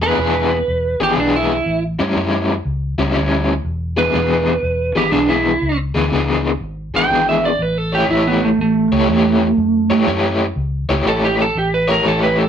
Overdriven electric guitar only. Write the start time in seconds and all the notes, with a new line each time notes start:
0.02 E3 B3 D4 G#4
0.18 E3 B3 D4 G#4
1.00 E3 B3 D4 G#4
1.17 E3 B3 D4 G#4
1.99 A2 G3 C#4 E4
2.16 A2 G3 C#4 E4
2.98 A2 G3 C#4 E4
3.15 A2 G3 C#4 E4
3.97 E3 B3 D4 G#4
4.14 E3 B3 D4 G#4
4.95 E3 B3 D4 G#4
5.12 E3 B3 D4 G#4
5.95 E3 B3 D4 G#4
6.11 E3 B3 D4 G#4
6.94 E3 B3 D4 G#4
7.10 E3 B3 D4 G#4
7.92 A3 E4 G4 C#5
8.10 A3 E4 G4 C#5
8.92 A3 E4 G4 C#5
9.08 A3 E4 G4 C#5
9.90 A3 E4 G4 C#5
10.07 A3 E4 G4 C#5
10.89 A3 E4 G4 C#5
11.05 A3 E4 G4 C#5
11.88 A3 E4 G4 C#5
12.05 A3 E4 G4 C#5